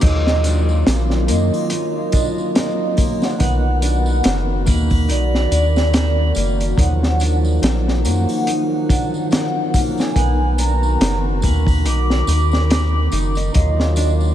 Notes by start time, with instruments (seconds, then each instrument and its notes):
0.01 sub bass D#2, tonewheel organ D#3 F#3 F4, ambient pad D#3 F#3 A#3 F4, nylon-string guitar D#4, soft synth lead D#5, kick, closed hi-hat, crash, tambourine
0.27 snare
0.44 nylon-string guitar D4, closed hi-hat, tambourine
0.69 tambourine
0.86 sub bass A#1, nylon-string guitar D#3, snare, closed hi-hat, tambourine
1.10 snare
1.27 sub bass F#2, tonewheel organ D#3 F#3 F4, nylon-string guitar A#3, soft synth lead D#5, closed hi-hat, tambourine
1.54 tambourine, triangle
1.70 nylon-string guitar D#4, closed hi-hat, tambourine
1.96 soft synth lead D#5
2.12 nylon-string guitar D4, kick, closed hi-hat, tambourine
2.38 tambourine
2.55 nylon-string guitar D#3, soft synth lead D#5, snare, closed hi-hat, tambourine
2.97 nylon-string guitar A#3, kick, closed hi-hat, tambourine, triangle
3.22 soft synth lead F#5, snare, tambourine
3.39 sub bass B1, tonewheel organ D#3 B3 B4, ambient pad D#3 F#4, nylon-string guitar D#4, kick, closed hi-hat, tambourine
3.82 nylon-string guitar D4, soft synth lead F#5, closed hi-hat, tambourine
4.06 tambourine
4.23 sub bass F#1, nylon-string guitar D#3, snare, closed hi-hat, tambourine
4.65 sub bass D#2, tonewheel organ D#3 B5, nylon-string guitar A#3, kick, closed hi-hat, tambourine
4.90 kick, tambourine, triangle
5.08 sub bass B1, nylon-string guitar D#4, soft synth lead D5, closed hi-hat, tambourine
5.35 snare
5.51 sub bass D#2, nylon-string guitar D4, closed hi-hat, tambourine
5.76 snare, tambourine
5.93 nylon-string guitar D#3, snare, closed hi-hat, tambourine
6.35 sub bass F#1, nylon-string guitar A#3, closed hi-hat, tambourine
6.60 closed hi-hat, tambourine
6.77 sub bass D#2, tonewheel organ D#3 F3 F#3, ambient pad A#3 D#4, nylon-string guitar D#4, soft synth lead F#5, kick, closed hi-hat, tambourine
7.03 snare
7.20 nylon-string guitar D4, closed hi-hat, tambourine
7.45 tambourine
7.62 sub bass A#1, nylon-string guitar D#3, snare, closed hi-hat, tambourine
7.88 snare
8.04 sub bass F#2, tonewheel organ D#3 F3 F#3, nylon-string guitar A#3, soft synth lead F#5, closed hi-hat, tambourine
8.29 tambourine, triangle
8.47 nylon-string guitar D#4, closed hi-hat, tambourine
8.72 soft synth lead F#5
8.89 nylon-string guitar D4, kick, closed hi-hat, tambourine
9.14 tambourine
9.31 nylon-string guitar D#3, soft synth lead F#5, snare, closed hi-hat, tambourine
9.74 nylon-string guitar A#3, kick, closed hi-hat, tambourine, triangle
9.98 soft synth lead G#5, snare, tambourine
10.14 sub bass B1, tonewheel organ D#3 B3 B4, ambient pad D#3 F#4, nylon-string guitar D#4, kick, closed hi-hat, tambourine
10.58 nylon-string guitar D4, soft synth lead A#5, closed hi-hat, tambourine
10.83 tambourine
11.00 sub bass F#1, nylon-string guitar D#3, snare, closed hi-hat, tambourine
11.41 sub bass D#2, tonewheel organ D#3 B5, nylon-string guitar A#3, kick, closed hi-hat, tambourine
11.67 kick, tambourine, triangle
11.85 sub bass B1, nylon-string guitar D#4, soft synth lead D6, closed hi-hat, tambourine
12.10 snare
12.27 sub bass D#2, nylon-string guitar D#4, closed hi-hat, tambourine
12.52 snare, tambourine
12.70 nylon-string guitar D#4, snare, closed hi-hat, tambourine
13.12 sub bass F#1, nylon-string guitar D#4, closed hi-hat, tambourine
13.35 nylon-string guitar D#5, closed hi-hat, tambourine
13.52 sub bass D#2, tonewheel organ D#3 F#3 F4, synth texture F#3 F#4, ambient pad A#3 F5, nylon-string guitar D#4, soft synth lead D#5, kick, closed hi-hat, tambourine
13.80 snare
13.96 nylon-string guitar D4, closed hi-hat, tambourine
14.20 tambourine